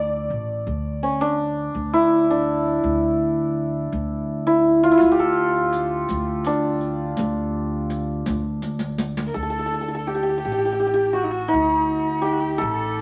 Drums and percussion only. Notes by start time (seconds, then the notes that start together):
5.00 riq
5.73 riq
6.09 riq
6.44 riq
6.81 riq
7.17 riq
7.90 riq
8.26 riq
8.62 riq
8.79 riq
8.98 riq
9.17 riq